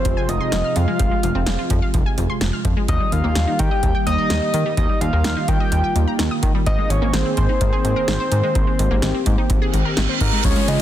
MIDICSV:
0, 0, Header, 1, 9, 480
1, 0, Start_track
1, 0, Tempo, 472441
1, 1011, Time_signature, 4, 2, 24, 8
1, 10991, End_track
2, 0, Start_track
2, 0, Title_t, "Analog synth lead"
2, 0, Program_c, 0, 81
2, 0, Note_on_c, 0, 72, 91
2, 292, Note_on_c, 0, 75, 106
2, 308, Note_off_c, 0, 72, 0
2, 771, Note_on_c, 0, 77, 105
2, 786, Note_off_c, 0, 75, 0
2, 1731, Note_off_c, 0, 77, 0
2, 2933, Note_on_c, 0, 75, 94
2, 3172, Note_on_c, 0, 77, 103
2, 3187, Note_off_c, 0, 75, 0
2, 3650, Note_on_c, 0, 79, 110
2, 3665, Note_off_c, 0, 77, 0
2, 4125, Note_off_c, 0, 79, 0
2, 4131, Note_on_c, 0, 75, 101
2, 4811, Note_off_c, 0, 75, 0
2, 4850, Note_on_c, 0, 75, 94
2, 5074, Note_off_c, 0, 75, 0
2, 5090, Note_on_c, 0, 77, 104
2, 5572, Note_on_c, 0, 79, 98
2, 5587, Note_off_c, 0, 77, 0
2, 6292, Note_off_c, 0, 79, 0
2, 6772, Note_on_c, 0, 75, 112
2, 7009, Note_on_c, 0, 73, 100
2, 7025, Note_off_c, 0, 75, 0
2, 7249, Note_on_c, 0, 72, 99
2, 7264, Note_off_c, 0, 73, 0
2, 7485, Note_off_c, 0, 72, 0
2, 7491, Note_on_c, 0, 72, 103
2, 10091, Note_off_c, 0, 72, 0
2, 10375, Note_on_c, 0, 70, 88
2, 10612, Note_on_c, 0, 73, 101
2, 10628, Note_off_c, 0, 70, 0
2, 10851, Note_on_c, 0, 75, 110
2, 10867, Note_off_c, 0, 73, 0
2, 10991, Note_off_c, 0, 75, 0
2, 10991, End_track
3, 0, Start_track
3, 0, Title_t, "Analog polysynth"
3, 0, Program_c, 1, 90
3, 10612, Note_on_c, 1, 56, 69
3, 10613, Note_on_c, 1, 61, 66
3, 10613, Note_on_c, 1, 65, 65
3, 10613, Note_on_c, 1, 68, 77
3, 10991, Note_off_c, 1, 56, 0
3, 10991, Note_off_c, 1, 61, 0
3, 10991, Note_off_c, 1, 65, 0
3, 10991, Note_off_c, 1, 68, 0
3, 10991, End_track
4, 0, Start_track
4, 0, Title_t, "Analog synth pad"
4, 0, Program_c, 2, 89
4, 0, Note_on_c, 2, 48, 80
4, 0, Note_on_c, 2, 53, 74
4, 0, Note_on_c, 2, 56, 73
4, 0, Note_on_c, 2, 65, 85
4, 2891, Note_off_c, 2, 53, 0
4, 2891, Note_off_c, 2, 65, 0
4, 2895, Note_off_c, 2, 48, 0
4, 2895, Note_off_c, 2, 56, 0
4, 2930, Note_on_c, 2, 55, 72
4, 2931, Note_on_c, 2, 51, 80
4, 2931, Note_on_c, 2, 58, 72
4, 2932, Note_on_c, 2, 67, 90
4, 4833, Note_off_c, 2, 67, 0
4, 4851, Note_on_c, 2, 65, 86
4, 6733, Note_off_c, 2, 55, 0
4, 6752, Note_off_c, 2, 65, 0
4, 6771, Note_on_c, 2, 60, 75
4, 6771, Note_on_c, 2, 68, 88
4, 8672, Note_off_c, 2, 68, 0
4, 8691, Note_on_c, 2, 67, 91
4, 10570, Note_off_c, 2, 51, 0
4, 10571, Note_off_c, 2, 58, 0
4, 10573, Note_off_c, 2, 60, 0
4, 10592, Note_off_c, 2, 67, 0
4, 10611, Note_on_c, 2, 49, 80
4, 10611, Note_on_c, 2, 65, 87
4, 10612, Note_on_c, 2, 53, 72
4, 10612, Note_on_c, 2, 56, 74
4, 10991, Note_off_c, 2, 49, 0
4, 10991, Note_off_c, 2, 53, 0
4, 10991, Note_off_c, 2, 56, 0
4, 10991, Note_off_c, 2, 65, 0
4, 10991, End_track
5, 0, Start_track
5, 0, Title_t, "Synth arpeggio sound"
5, 0, Program_c, 3, 84
5, 53, Note_on_c, 3, 53, 73
5, 117, Note_off_c, 3, 53, 0
5, 172, Note_on_c, 3, 80, 100
5, 236, Note_off_c, 3, 80, 0
5, 292, Note_on_c, 3, 53, 72
5, 357, Note_off_c, 3, 53, 0
5, 412, Note_on_c, 3, 84, 91
5, 476, Note_off_c, 3, 84, 0
5, 531, Note_on_c, 3, 53, 86
5, 595, Note_off_c, 3, 53, 0
5, 651, Note_on_c, 3, 89, 90
5, 716, Note_off_c, 3, 89, 0
5, 772, Note_on_c, 3, 53, 72
5, 836, Note_off_c, 3, 53, 0
5, 891, Note_on_c, 3, 56, 94
5, 956, Note_off_c, 3, 56, 0
5, 1012, Note_on_c, 3, 53, 88
5, 1076, Note_off_c, 3, 53, 0
5, 1132, Note_on_c, 3, 56, 76
5, 1196, Note_off_c, 3, 56, 0
5, 1252, Note_on_c, 3, 53, 73
5, 1317, Note_off_c, 3, 53, 0
5, 1371, Note_on_c, 3, 60, 94
5, 1436, Note_off_c, 3, 60, 0
5, 1492, Note_on_c, 3, 53, 71
5, 1556, Note_off_c, 3, 53, 0
5, 1612, Note_on_c, 3, 65, 84
5, 1677, Note_off_c, 3, 65, 0
5, 1733, Note_on_c, 3, 53, 91
5, 1797, Note_off_c, 3, 53, 0
5, 1852, Note_on_c, 3, 77, 82
5, 1916, Note_off_c, 3, 77, 0
5, 1972, Note_on_c, 3, 53, 76
5, 2036, Note_off_c, 3, 53, 0
5, 2093, Note_on_c, 3, 80, 99
5, 2157, Note_off_c, 3, 80, 0
5, 2213, Note_on_c, 3, 53, 72
5, 2277, Note_off_c, 3, 53, 0
5, 2332, Note_on_c, 3, 84, 88
5, 2397, Note_off_c, 3, 84, 0
5, 2452, Note_on_c, 3, 53, 84
5, 2516, Note_off_c, 3, 53, 0
5, 2572, Note_on_c, 3, 89, 87
5, 2637, Note_off_c, 3, 89, 0
5, 2693, Note_on_c, 3, 53, 71
5, 2757, Note_off_c, 3, 53, 0
5, 2812, Note_on_c, 3, 56, 93
5, 2877, Note_off_c, 3, 56, 0
5, 2931, Note_on_c, 3, 51, 89
5, 2996, Note_off_c, 3, 51, 0
5, 3052, Note_on_c, 3, 55, 76
5, 3117, Note_off_c, 3, 55, 0
5, 3172, Note_on_c, 3, 51, 72
5, 3236, Note_off_c, 3, 51, 0
5, 3292, Note_on_c, 3, 58, 95
5, 3356, Note_off_c, 3, 58, 0
5, 3412, Note_on_c, 3, 51, 72
5, 3476, Note_off_c, 3, 51, 0
5, 3531, Note_on_c, 3, 63, 85
5, 3596, Note_off_c, 3, 63, 0
5, 3652, Note_on_c, 3, 51, 90
5, 3717, Note_off_c, 3, 51, 0
5, 3771, Note_on_c, 3, 75, 80
5, 3836, Note_off_c, 3, 75, 0
5, 3892, Note_on_c, 3, 51, 77
5, 3956, Note_off_c, 3, 51, 0
5, 4011, Note_on_c, 3, 79, 99
5, 4076, Note_off_c, 3, 79, 0
5, 4131, Note_on_c, 3, 51, 72
5, 4196, Note_off_c, 3, 51, 0
5, 4251, Note_on_c, 3, 82, 91
5, 4316, Note_off_c, 3, 82, 0
5, 4372, Note_on_c, 3, 51, 84
5, 4436, Note_off_c, 3, 51, 0
5, 4492, Note_on_c, 3, 87, 87
5, 4556, Note_off_c, 3, 87, 0
5, 4612, Note_on_c, 3, 51, 74
5, 4676, Note_off_c, 3, 51, 0
5, 4733, Note_on_c, 3, 55, 95
5, 4797, Note_off_c, 3, 55, 0
5, 4852, Note_on_c, 3, 51, 89
5, 4917, Note_off_c, 3, 51, 0
5, 4971, Note_on_c, 3, 55, 75
5, 5036, Note_off_c, 3, 55, 0
5, 5090, Note_on_c, 3, 51, 69
5, 5155, Note_off_c, 3, 51, 0
5, 5212, Note_on_c, 3, 58, 94
5, 5276, Note_off_c, 3, 58, 0
5, 5332, Note_on_c, 3, 51, 74
5, 5396, Note_off_c, 3, 51, 0
5, 5452, Note_on_c, 3, 63, 84
5, 5516, Note_off_c, 3, 63, 0
5, 5572, Note_on_c, 3, 51, 86
5, 5637, Note_off_c, 3, 51, 0
5, 5692, Note_on_c, 3, 75, 84
5, 5757, Note_off_c, 3, 75, 0
5, 5813, Note_on_c, 3, 51, 75
5, 5877, Note_off_c, 3, 51, 0
5, 5932, Note_on_c, 3, 79, 97
5, 5996, Note_off_c, 3, 79, 0
5, 6053, Note_on_c, 3, 51, 72
5, 6117, Note_off_c, 3, 51, 0
5, 6172, Note_on_c, 3, 82, 91
5, 6237, Note_off_c, 3, 82, 0
5, 6293, Note_on_c, 3, 51, 82
5, 6357, Note_off_c, 3, 51, 0
5, 6412, Note_on_c, 3, 87, 92
5, 6477, Note_off_c, 3, 87, 0
5, 6533, Note_on_c, 3, 51, 71
5, 6597, Note_off_c, 3, 51, 0
5, 6652, Note_on_c, 3, 55, 93
5, 6717, Note_off_c, 3, 55, 0
5, 6772, Note_on_c, 3, 51, 88
5, 6836, Note_off_c, 3, 51, 0
5, 6892, Note_on_c, 3, 56, 74
5, 6956, Note_off_c, 3, 56, 0
5, 7012, Note_on_c, 3, 51, 71
5, 7076, Note_off_c, 3, 51, 0
5, 7132, Note_on_c, 3, 58, 94
5, 7196, Note_off_c, 3, 58, 0
5, 7251, Note_on_c, 3, 51, 74
5, 7316, Note_off_c, 3, 51, 0
5, 7371, Note_on_c, 3, 60, 83
5, 7436, Note_off_c, 3, 60, 0
5, 7491, Note_on_c, 3, 51, 88
5, 7556, Note_off_c, 3, 51, 0
5, 7610, Note_on_c, 3, 63, 84
5, 7675, Note_off_c, 3, 63, 0
5, 7730, Note_on_c, 3, 51, 76
5, 7795, Note_off_c, 3, 51, 0
5, 7849, Note_on_c, 3, 68, 98
5, 7914, Note_off_c, 3, 68, 0
5, 7969, Note_on_c, 3, 51, 71
5, 8035, Note_off_c, 3, 51, 0
5, 8089, Note_on_c, 3, 70, 89
5, 8155, Note_off_c, 3, 70, 0
5, 8209, Note_on_c, 3, 51, 87
5, 8274, Note_off_c, 3, 51, 0
5, 8329, Note_on_c, 3, 72, 91
5, 8395, Note_off_c, 3, 72, 0
5, 8450, Note_on_c, 3, 51, 75
5, 8515, Note_off_c, 3, 51, 0
5, 8570, Note_on_c, 3, 56, 94
5, 8635, Note_off_c, 3, 56, 0
5, 8690, Note_on_c, 3, 51, 92
5, 8755, Note_off_c, 3, 51, 0
5, 8810, Note_on_c, 3, 56, 76
5, 8875, Note_off_c, 3, 56, 0
5, 8930, Note_on_c, 3, 51, 70
5, 8995, Note_off_c, 3, 51, 0
5, 9051, Note_on_c, 3, 58, 99
5, 9116, Note_off_c, 3, 58, 0
5, 9171, Note_on_c, 3, 51, 75
5, 9236, Note_off_c, 3, 51, 0
5, 9291, Note_on_c, 3, 60, 85
5, 9356, Note_off_c, 3, 60, 0
5, 9411, Note_on_c, 3, 51, 87
5, 9476, Note_off_c, 3, 51, 0
5, 9531, Note_on_c, 3, 63, 83
5, 9596, Note_off_c, 3, 63, 0
5, 9651, Note_on_c, 3, 51, 75
5, 9716, Note_off_c, 3, 51, 0
5, 9771, Note_on_c, 3, 68, 100
5, 9836, Note_off_c, 3, 68, 0
5, 9891, Note_on_c, 3, 51, 72
5, 9956, Note_off_c, 3, 51, 0
5, 10012, Note_on_c, 3, 70, 88
5, 10076, Note_off_c, 3, 70, 0
5, 10132, Note_on_c, 3, 51, 87
5, 10196, Note_off_c, 3, 51, 0
5, 10252, Note_on_c, 3, 72, 92
5, 10317, Note_off_c, 3, 72, 0
5, 10373, Note_on_c, 3, 51, 73
5, 10437, Note_off_c, 3, 51, 0
5, 10493, Note_on_c, 3, 56, 92
5, 10557, Note_off_c, 3, 56, 0
5, 10613, Note_on_c, 3, 53, 94
5, 10677, Note_off_c, 3, 53, 0
5, 10733, Note_on_c, 3, 56, 77
5, 10797, Note_off_c, 3, 56, 0
5, 10853, Note_on_c, 3, 53, 73
5, 10917, Note_off_c, 3, 53, 0
5, 10991, End_track
6, 0, Start_track
6, 0, Title_t, "Analog synth bass"
6, 0, Program_c, 4, 38
6, 54, Note_on_c, 4, 29, 109
6, 155, Note_off_c, 4, 29, 0
6, 293, Note_on_c, 4, 29, 105
6, 394, Note_off_c, 4, 29, 0
6, 534, Note_on_c, 4, 29, 113
6, 635, Note_off_c, 4, 29, 0
6, 773, Note_on_c, 4, 41, 93
6, 875, Note_off_c, 4, 41, 0
6, 1012, Note_on_c, 4, 29, 104
6, 1114, Note_off_c, 4, 29, 0
6, 1251, Note_on_c, 4, 29, 104
6, 1354, Note_off_c, 4, 29, 0
6, 1372, Note_on_c, 4, 29, 99
6, 1474, Note_off_c, 4, 29, 0
6, 1493, Note_on_c, 4, 29, 104
6, 1594, Note_off_c, 4, 29, 0
6, 1732, Note_on_c, 4, 41, 98
6, 1834, Note_off_c, 4, 41, 0
6, 1972, Note_on_c, 4, 29, 106
6, 2074, Note_off_c, 4, 29, 0
6, 2212, Note_on_c, 4, 29, 96
6, 2314, Note_off_c, 4, 29, 0
6, 2450, Note_on_c, 4, 29, 104
6, 2553, Note_off_c, 4, 29, 0
6, 2690, Note_on_c, 4, 41, 98
6, 2793, Note_off_c, 4, 41, 0
6, 2931, Note_on_c, 4, 39, 112
6, 3033, Note_off_c, 4, 39, 0
6, 3172, Note_on_c, 4, 39, 95
6, 3274, Note_off_c, 4, 39, 0
6, 3292, Note_on_c, 4, 39, 90
6, 3394, Note_off_c, 4, 39, 0
6, 3413, Note_on_c, 4, 39, 107
6, 3514, Note_off_c, 4, 39, 0
6, 3651, Note_on_c, 4, 51, 108
6, 3754, Note_off_c, 4, 51, 0
6, 3892, Note_on_c, 4, 39, 107
6, 3994, Note_off_c, 4, 39, 0
6, 4132, Note_on_c, 4, 39, 106
6, 4234, Note_off_c, 4, 39, 0
6, 4371, Note_on_c, 4, 39, 99
6, 4474, Note_off_c, 4, 39, 0
6, 4611, Note_on_c, 4, 51, 99
6, 4714, Note_off_c, 4, 51, 0
6, 4851, Note_on_c, 4, 39, 107
6, 4954, Note_off_c, 4, 39, 0
6, 5091, Note_on_c, 4, 39, 101
6, 5194, Note_off_c, 4, 39, 0
6, 5211, Note_on_c, 4, 39, 92
6, 5314, Note_off_c, 4, 39, 0
6, 5332, Note_on_c, 4, 39, 101
6, 5434, Note_off_c, 4, 39, 0
6, 5571, Note_on_c, 4, 51, 107
6, 5673, Note_off_c, 4, 51, 0
6, 5811, Note_on_c, 4, 39, 110
6, 5913, Note_off_c, 4, 39, 0
6, 6051, Note_on_c, 4, 39, 107
6, 6153, Note_off_c, 4, 39, 0
6, 6290, Note_on_c, 4, 39, 104
6, 6393, Note_off_c, 4, 39, 0
6, 6530, Note_on_c, 4, 51, 96
6, 6633, Note_off_c, 4, 51, 0
6, 6771, Note_on_c, 4, 32, 101
6, 6873, Note_off_c, 4, 32, 0
6, 7009, Note_on_c, 4, 32, 103
6, 7113, Note_off_c, 4, 32, 0
6, 7128, Note_on_c, 4, 32, 89
6, 7232, Note_off_c, 4, 32, 0
6, 7248, Note_on_c, 4, 32, 98
6, 7352, Note_off_c, 4, 32, 0
6, 7491, Note_on_c, 4, 44, 99
6, 7594, Note_off_c, 4, 44, 0
6, 7732, Note_on_c, 4, 32, 103
6, 7834, Note_off_c, 4, 32, 0
6, 7971, Note_on_c, 4, 32, 104
6, 8073, Note_off_c, 4, 32, 0
6, 8210, Note_on_c, 4, 32, 102
6, 8313, Note_off_c, 4, 32, 0
6, 8450, Note_on_c, 4, 44, 98
6, 8553, Note_off_c, 4, 44, 0
6, 8690, Note_on_c, 4, 32, 114
6, 8793, Note_off_c, 4, 32, 0
6, 8932, Note_on_c, 4, 32, 107
6, 9034, Note_off_c, 4, 32, 0
6, 9051, Note_on_c, 4, 32, 99
6, 9153, Note_off_c, 4, 32, 0
6, 9170, Note_on_c, 4, 32, 99
6, 9273, Note_off_c, 4, 32, 0
6, 9412, Note_on_c, 4, 44, 101
6, 9514, Note_off_c, 4, 44, 0
6, 9652, Note_on_c, 4, 32, 108
6, 9754, Note_off_c, 4, 32, 0
6, 9892, Note_on_c, 4, 32, 105
6, 9994, Note_off_c, 4, 32, 0
6, 10131, Note_on_c, 4, 32, 107
6, 10233, Note_off_c, 4, 32, 0
6, 10370, Note_on_c, 4, 44, 96
6, 10473, Note_off_c, 4, 44, 0
6, 10611, Note_on_c, 4, 37, 113
6, 10713, Note_off_c, 4, 37, 0
6, 10851, Note_on_c, 4, 49, 98
6, 10953, Note_off_c, 4, 49, 0
6, 10991, End_track
7, 0, Start_track
7, 0, Title_t, "Downlifter"
7, 0, Program_c, 5, 103
7, 10611, Note_on_c, 5, 60, 84
7, 10991, Note_off_c, 5, 60, 0
7, 10991, End_track
8, 0, Start_track
8, 0, Title_t, "Reverse cymbal"
8, 0, Program_c, 6, 119
8, 9651, Note_on_c, 6, 60, 85
8, 10611, Note_off_c, 6, 60, 0
8, 10991, End_track
9, 0, Start_track
9, 0, Title_t, "Drums"
9, 51, Note_on_c, 9, 42, 69
9, 53, Note_on_c, 9, 36, 94
9, 152, Note_off_c, 9, 42, 0
9, 155, Note_off_c, 9, 36, 0
9, 293, Note_on_c, 9, 42, 57
9, 394, Note_off_c, 9, 42, 0
9, 530, Note_on_c, 9, 38, 112
9, 530, Note_on_c, 9, 42, 75
9, 631, Note_off_c, 9, 38, 0
9, 632, Note_off_c, 9, 42, 0
9, 770, Note_on_c, 9, 42, 76
9, 872, Note_off_c, 9, 42, 0
9, 1011, Note_on_c, 9, 42, 69
9, 1012, Note_on_c, 9, 36, 115
9, 1112, Note_off_c, 9, 42, 0
9, 1113, Note_off_c, 9, 36, 0
9, 1253, Note_on_c, 9, 42, 73
9, 1355, Note_off_c, 9, 42, 0
9, 1488, Note_on_c, 9, 38, 120
9, 1490, Note_on_c, 9, 42, 77
9, 1590, Note_off_c, 9, 38, 0
9, 1592, Note_off_c, 9, 42, 0
9, 1728, Note_on_c, 9, 42, 71
9, 1732, Note_on_c, 9, 36, 86
9, 1830, Note_off_c, 9, 42, 0
9, 1833, Note_off_c, 9, 36, 0
9, 1969, Note_on_c, 9, 42, 72
9, 1972, Note_on_c, 9, 36, 89
9, 2071, Note_off_c, 9, 42, 0
9, 2074, Note_off_c, 9, 36, 0
9, 2212, Note_on_c, 9, 42, 56
9, 2314, Note_off_c, 9, 42, 0
9, 2449, Note_on_c, 9, 38, 113
9, 2449, Note_on_c, 9, 42, 74
9, 2550, Note_off_c, 9, 38, 0
9, 2551, Note_off_c, 9, 42, 0
9, 2690, Note_on_c, 9, 36, 92
9, 2690, Note_on_c, 9, 42, 72
9, 2791, Note_off_c, 9, 42, 0
9, 2792, Note_off_c, 9, 36, 0
9, 2931, Note_on_c, 9, 36, 116
9, 2931, Note_on_c, 9, 42, 68
9, 3032, Note_off_c, 9, 42, 0
9, 3033, Note_off_c, 9, 36, 0
9, 3173, Note_on_c, 9, 42, 72
9, 3275, Note_off_c, 9, 42, 0
9, 3408, Note_on_c, 9, 38, 120
9, 3410, Note_on_c, 9, 42, 77
9, 3510, Note_off_c, 9, 38, 0
9, 3512, Note_off_c, 9, 42, 0
9, 3649, Note_on_c, 9, 42, 72
9, 3652, Note_on_c, 9, 36, 88
9, 3751, Note_off_c, 9, 42, 0
9, 3754, Note_off_c, 9, 36, 0
9, 3891, Note_on_c, 9, 42, 71
9, 3892, Note_on_c, 9, 36, 91
9, 3992, Note_off_c, 9, 42, 0
9, 3994, Note_off_c, 9, 36, 0
9, 4133, Note_on_c, 9, 42, 58
9, 4234, Note_off_c, 9, 42, 0
9, 4370, Note_on_c, 9, 38, 114
9, 4370, Note_on_c, 9, 42, 75
9, 4471, Note_off_c, 9, 38, 0
9, 4472, Note_off_c, 9, 42, 0
9, 4610, Note_on_c, 9, 42, 77
9, 4712, Note_off_c, 9, 42, 0
9, 4851, Note_on_c, 9, 36, 118
9, 4851, Note_on_c, 9, 42, 71
9, 4952, Note_off_c, 9, 42, 0
9, 4953, Note_off_c, 9, 36, 0
9, 5094, Note_on_c, 9, 42, 74
9, 5196, Note_off_c, 9, 42, 0
9, 5328, Note_on_c, 9, 38, 119
9, 5330, Note_on_c, 9, 42, 78
9, 5430, Note_off_c, 9, 38, 0
9, 5432, Note_off_c, 9, 42, 0
9, 5569, Note_on_c, 9, 42, 70
9, 5572, Note_on_c, 9, 36, 91
9, 5671, Note_off_c, 9, 42, 0
9, 5673, Note_off_c, 9, 36, 0
9, 5811, Note_on_c, 9, 42, 71
9, 5912, Note_off_c, 9, 42, 0
9, 6052, Note_on_c, 9, 42, 57
9, 6154, Note_off_c, 9, 42, 0
9, 6289, Note_on_c, 9, 38, 112
9, 6290, Note_on_c, 9, 42, 74
9, 6391, Note_off_c, 9, 38, 0
9, 6392, Note_off_c, 9, 42, 0
9, 6530, Note_on_c, 9, 36, 95
9, 6530, Note_on_c, 9, 42, 77
9, 6632, Note_off_c, 9, 36, 0
9, 6632, Note_off_c, 9, 42, 0
9, 6771, Note_on_c, 9, 36, 119
9, 6771, Note_on_c, 9, 42, 69
9, 6873, Note_off_c, 9, 36, 0
9, 6873, Note_off_c, 9, 42, 0
9, 7013, Note_on_c, 9, 42, 71
9, 7115, Note_off_c, 9, 42, 0
9, 7249, Note_on_c, 9, 38, 113
9, 7251, Note_on_c, 9, 42, 80
9, 7350, Note_off_c, 9, 38, 0
9, 7352, Note_off_c, 9, 42, 0
9, 7489, Note_on_c, 9, 42, 71
9, 7491, Note_on_c, 9, 36, 88
9, 7591, Note_off_c, 9, 42, 0
9, 7593, Note_off_c, 9, 36, 0
9, 7730, Note_on_c, 9, 42, 73
9, 7732, Note_on_c, 9, 36, 95
9, 7832, Note_off_c, 9, 42, 0
9, 7834, Note_off_c, 9, 36, 0
9, 7972, Note_on_c, 9, 42, 58
9, 8074, Note_off_c, 9, 42, 0
9, 8209, Note_on_c, 9, 38, 114
9, 8209, Note_on_c, 9, 42, 75
9, 8310, Note_off_c, 9, 38, 0
9, 8311, Note_off_c, 9, 42, 0
9, 8449, Note_on_c, 9, 42, 78
9, 8551, Note_off_c, 9, 42, 0
9, 8690, Note_on_c, 9, 42, 73
9, 8691, Note_on_c, 9, 36, 121
9, 8792, Note_off_c, 9, 36, 0
9, 8792, Note_off_c, 9, 42, 0
9, 8933, Note_on_c, 9, 42, 76
9, 9035, Note_off_c, 9, 42, 0
9, 9168, Note_on_c, 9, 38, 114
9, 9170, Note_on_c, 9, 42, 77
9, 9270, Note_off_c, 9, 38, 0
9, 9271, Note_off_c, 9, 42, 0
9, 9409, Note_on_c, 9, 42, 71
9, 9412, Note_on_c, 9, 36, 91
9, 9511, Note_off_c, 9, 42, 0
9, 9513, Note_off_c, 9, 36, 0
9, 9650, Note_on_c, 9, 42, 72
9, 9652, Note_on_c, 9, 36, 96
9, 9751, Note_off_c, 9, 42, 0
9, 9753, Note_off_c, 9, 36, 0
9, 9892, Note_on_c, 9, 42, 60
9, 9993, Note_off_c, 9, 42, 0
9, 10128, Note_on_c, 9, 38, 116
9, 10129, Note_on_c, 9, 42, 76
9, 10230, Note_off_c, 9, 38, 0
9, 10231, Note_off_c, 9, 42, 0
9, 10370, Note_on_c, 9, 36, 96
9, 10370, Note_on_c, 9, 46, 75
9, 10471, Note_off_c, 9, 46, 0
9, 10472, Note_off_c, 9, 36, 0
9, 10610, Note_on_c, 9, 42, 75
9, 10610, Note_on_c, 9, 49, 105
9, 10611, Note_on_c, 9, 36, 122
9, 10711, Note_off_c, 9, 42, 0
9, 10712, Note_off_c, 9, 49, 0
9, 10713, Note_off_c, 9, 36, 0
9, 10729, Note_on_c, 9, 42, 53
9, 10831, Note_off_c, 9, 42, 0
9, 10853, Note_on_c, 9, 42, 74
9, 10954, Note_off_c, 9, 42, 0
9, 10991, End_track
0, 0, End_of_file